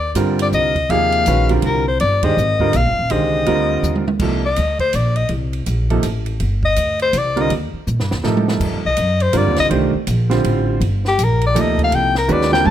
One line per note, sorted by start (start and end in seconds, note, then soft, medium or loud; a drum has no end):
0.00 0.14 D#2 medium
0.00 0.13 D5 medium
0.15 0.51 G2 medium
0.15 0.71 D3 medium
0.15 0.71 G3 medium
0.15 0.71 C4 medium
0.15 0.71 F4 medium
0.15 0.71 A#4 medium
0.15 hi-hat pedal medium
0.15 ride medium
0.39 0.48 D5 medium
0.39 ride medium
0.52 0.88 C2 medium
0.52 0.92 D#5 medium
0.52 hi-hat pedal medium
0.76 kick medium
0.76 ride soft
0.89 1.25 D#2 medium
0.89 1.25 C3 medium
0.89 1.25 F3 medium
0.89 1.25 A#3 medium
0.89 1.25 D#4 medium
0.89 1.26 G#4 medium
0.89 1.50 F5 loud
0.89 ride medium
1.12 ride soft
1.26 1.62 A#1 medium
1.26 1.47 D#3 medium
1.26 1.48 G#3 medium
1.26 1.48 C#4 medium
1.26 1.48 F#4 medium
1.26 1.48 B4 medium
1.26 hi-hat pedal medium
1.26 ride medium
1.49 1.82 D3 medium
1.49 1.82 G3 medium
1.49 1.82 C4 soft
1.49 1.82 F4 soft
1.49 1.82 A#4 medium
1.49 ride soft
1.62 1.98 C2 medium
1.62 1.86 A#4 medium
1.62 ride medium
1.88 2.00 C5 medium
2.00 2.36 G1 medium
2.00 2.26 D5 medium
2.00 ride medium
2.23 2.35 D#3 medium
2.23 2.36 G#3 medium
2.23 2.36 D4 medium
2.23 2.36 G4 medium
2.23 2.36 C5 medium
2.23 2.78 D#5 medium
2.23 kick medium
2.23 ride medium
2.37 2.72 G#1 medium
2.37 hi-hat pedal medium
2.60 2.72 D3 medium
2.60 2.72 G3 medium
2.60 2.73 C4 medium
2.60 2.72 F4 medium
2.60 2.73 A#4 medium
2.60 kick medium
2.73 2.86 A#1 medium
2.73 3.13 F5 medium
2.73 hi-hat pedal soft
2.73 ride medium
2.86 2.98 G1 medium
2.99 3.10 D#1 medium
3.10 3.46 C2 medium
3.10 3.45 D3 medium
3.10 3.46 D#3 medium
3.10 3.46 G#3 medium
3.10 3.46 G4 medium
3.10 3.46 C5 medium
3.10 4.07 D#5 medium
3.10 ride medium
3.46 3.82 D2 medium
3.46 4.02 D3 medium
3.46 4.02 G3 medium
3.46 4.02 C4 medium
3.46 4.02 F4 medium
3.46 4.02 A#4 medium
3.46 ride medium
3.83 4.19 D#2 medium
3.83 hi-hat pedal medium
3.95 mid tom medium
4.08 mid tom medium
4.19 4.56 C2 medium
4.19 4.42 C3 medium
4.19 4.42 F3 soft
4.19 4.42 A#3 soft
4.19 4.42 D#4 soft
4.19 4.42 A4 medium
4.19 kick medium
4.19 crash medium
4.46 4.79 D#5 medium
4.56 4.93 D2 medium
4.56 hi-hat pedal medium
4.56 ride medium
4.79 4.97 C5 medium
4.79 kick medium
4.79 ride soft
4.93 5.29 A#1 medium
4.93 5.18 D5 medium
4.93 hi-hat pedal soft
4.93 ride medium
5.16 5.30 D#5 medium
5.16 ride soft
5.29 5.66 C2 medium
5.29 ride medium
5.53 ride soft
5.66 6.03 A#1 medium
5.66 hi-hat pedal medium
5.66 ride medium
5.90 6.03 C3 medium
5.90 6.03 F3 medium
5.90 6.03 A#3 soft
5.90 6.03 D#4 medium
5.90 6.03 A4 medium
5.90 ride soft
6.03 6.39 A1 medium
6.03 hi-hat pedal medium
6.03 ride medium
6.26 ride soft
6.40 6.76 G1 medium
6.40 ride medium
6.63 6.99 D#5 medium
6.63 kick medium
6.76 7.12 D2 medium
6.76 hi-hat pedal medium
6.76 ride medium
6.99 7.20 C5 medium
6.99 ride soft
7.13 7.49 C2 medium
7.13 hi-hat pedal medium
7.13 ride medium
7.18 7.43 D5 medium
7.36 7.49 D3 medium
7.36 7.49 G3 medium
7.36 7.49 C4 medium
7.36 7.49 F4 medium
7.36 7.49 A#4 medium
7.36 ride soft
7.41 7.53 D#5 medium
7.50 7.72 D#2 medium
7.50 ride medium
7.73 muted upright bass stroke soft
7.87 8.01 A#2 medium
7.87 hi-hat pedal soft
8.00 8.11 G2 medium
8.00 snare medium
8.11 8.23 D#2 medium
8.11 snare medium
8.23 8.60 A2 medium
8.23 8.79 C3 medium
8.23 8.79 F3 medium
8.23 8.80 D#4 medium
8.23 8.80 A4 medium
8.23 8.79 A#4 medium
8.23 snare medium
8.37 mid tom medium
8.48 snare medium
8.60 8.74 G2 medium
8.60 kick medium
8.60 crash medium
8.72 8.85 D#2 medium
8.85 8.97 C2 medium
8.85 9.23 D#5 medium
8.97 9.33 F#2 medium
8.97 hi-hat pedal medium
8.97 ride medium
9.20 9.39 C5 medium
9.20 ride soft
9.33 9.46 G2 medium
9.33 9.89 D3 medium
9.33 9.89 G3 medium
9.33 9.89 C4 medium
9.33 9.89 F4 medium
9.33 9.89 A#4 medium
9.33 hi-hat pedal medium
9.33 ride medium
9.37 9.59 D5 medium
9.46 9.58 D#2 medium
9.56 9.70 C2 medium
9.56 9.67 D#5 medium
9.56 snare medium
9.56 ride soft
9.70 9.92 C2 medium
9.70 9.91 D#3 medium
9.70 9.92 A3 medium
9.70 9.92 D4 medium
9.70 9.92 G4 medium
9.70 9.92 C5 medium
9.70 ride medium
9.95 muted upright bass stroke soft
10.07 10.43 A#1 medium
10.07 hi-hat pedal medium
10.07 ride medium
10.30 10.78 D3 medium
10.30 10.78 G3 medium
10.30 10.78 C4 medium
10.30 10.78 F4 medium
10.30 10.78 C5 medium
10.30 snare soft
10.30 ride soft
10.44 10.80 A1 medium
10.44 ride medium
10.81 11.17 G1 medium
10.81 ride medium
11.05 11.25 G4 medium
11.05 snare soft
11.19 11.54 A#1 medium
11.19 hi-hat pedal medium
11.19 ride medium
11.24 11.44 A#4 medium
11.41 ride soft
11.46 11.63 D5 medium
11.54 11.91 D2 medium
11.54 12.10 C3 medium
11.54 12.10 F3 medium
11.54 12.10 A#3 medium
11.54 12.10 D#4 medium
11.54 12.10 A4 medium
11.54 hi-hat pedal medium
11.54 ride medium
11.61 11.81 D#5 medium
11.78 kick soft
11.78 ride soft
11.84 11.97 F5 medium
11.92 12.28 C2 medium
11.92 12.17 G5 loud
11.92 ride medium
12.15 12.34 A#4 medium
12.15 snare medium
12.28 12.64 D#2 medium
12.28 12.49 D#3 medium
12.28 12.49 G#3 medium
12.28 12.49 C#4 medium
12.28 12.50 F#4 medium
12.28 12.49 B4 medium
12.28 hi-hat pedal medium
12.32 12.52 D5 medium
12.42 snare medium
12.52 12.71 D3 medium
12.52 12.71 G3 medium
12.52 12.71 C4 medium
12.52 12.71 F4 medium
12.52 12.71 A#4 medium
12.52 12.68 G5 loud
12.52 snare medium
12.65 12.71 G2 medium
12.65 12.71 A5 loud
12.65 mid tom medium